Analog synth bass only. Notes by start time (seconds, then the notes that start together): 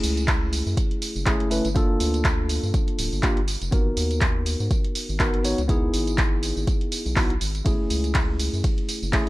0.04 C#2
0.66 F#2
1.16 F#1
1.65 G1
2.00 D2
2.63 G2
2.99 D1
3.12 G1
3.37 G1
3.62 F1
3.72 G#1
3.97 D#2
4.60 G#2
5.09 G#1
5.58 C#2
5.94 G#1
6.57 G#1
7.06 B1
7.41 G#1
7.66 F#1
7.90 C#2
8.53 F#2
9.03 F#1